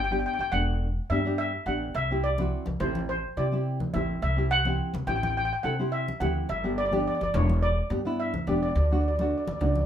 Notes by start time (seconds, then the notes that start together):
Already playing: G1
0.04 G5
0.10 B3 D4 G4 G5
0.19 G5
0.26 G5
0.34 G5
0.39 G1 G5
0.52 E1 B3 D4 A4 F#5
1.10 G2 B3 D4 G4 E5
1.25 B3 D4 G4
1.38 E5
1.66 A1 B3 D4 G4 F#5
1.94 C2 E5
2.10 C4 E4 G4
2.24 D5
2.38 C4 E4 F#4, high conga
2.66 C2, high conga
2.80 A1 C4 E4 G4 C5, low conga
2.95 high conga
3.09 C5
3.37 C3 C4 E4 G4 D5
3.52 C4 E4 G4
3.80 high conga, low conga
3.94 A1 C4 E4 G4 E5, high conga, low conga
4.22 C2 E5
4.36 C4 E4 G4
4.51 F#5
4.65 C4 E4 G4, high conga
4.94 C2, high conga
5.07 A1 C4 E4 G4 G5, low conga
5.16 G5
5.23 G5, high conga
5.30 G5
5.37 G5
5.45 G5
5.53 G5
5.63 C3 C4 E4 A4 F#5
5.79 C4 E4 G4
5.92 E5
6.08 high conga
6.20 D2 C4 E4 G4 F#5, high conga, low conga
6.49 G1 E5
6.64 B3 D4 G4
6.78 D5
6.85 D5
6.91 B3 D4 G4 D5, high conga
7.00 D5
7.07 D5
7.15 D5
7.21 G1 D5, high conga
7.34 E1 B3 D4 E4 C#5, low conga
7.49 high conga
7.63 D5
7.90 G2 B3 D4 G4
8.05 B3 D4 E4
8.20 E5
8.34 high conga, low conga
8.47 E1 B3 D4 G4 D5, high conga
8.55 D5
8.63 D5
8.69 D5
8.75 D2 D5
8.84 D5
8.91 A3 D4 F#4 D5
9.01 D5
9.08 D5
9.15 A3 D5, high conga
9.21 D4 F#4 D5
9.30 D5
9.38 D5
9.45 D2 D5, high conga
9.53 D5
9.59 C#2 A3 D4 F#4 D5, low conga
9.67 D5
9.74 D5, high conga
9.81 D5